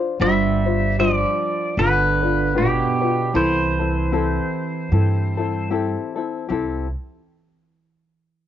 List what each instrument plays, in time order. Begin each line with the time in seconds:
Already playing: ukulele D4 F4 C5
0.20 upright bass G1, steel-string acoustic guitar G3, ukulele D4 F4 G4 C5, pedal steel guitar E5
0.66 ukulele D4 F4 C5
0.99 steel-string acoustic guitar F3, ukulele D4 F4 G4 C5, pedal steel guitar D5
1.77 upright bass G1, steel-string acoustic guitar D3, ukulele D4 F4 G4 B4, pedal steel guitar B4
2.22 ukulele D4 F4 B4
2.55 steel-string acoustic guitar B2, ukulele D4 F4 G4 B4, pedal steel guitar G4
3.01 ukulele D4 F4 B4
3.33 upright bass C2, steel-string acoustic guitar E3, ukulele C4 E4 G4 A4, pedal steel guitar C5
3.79 ukulele C4 E4 A4
4.12 ukulele C4 E4 G4 A4
4.91 upright bass G2, ukulele C4 E4 G4 A4
5.37 ukulele C4 E4 A4
5.71 ukulele C4 E4 G4 A4
6.16 ukulele C4 E4 A4
6.49 upright bass C2, ukulele C4 E4 G4 A4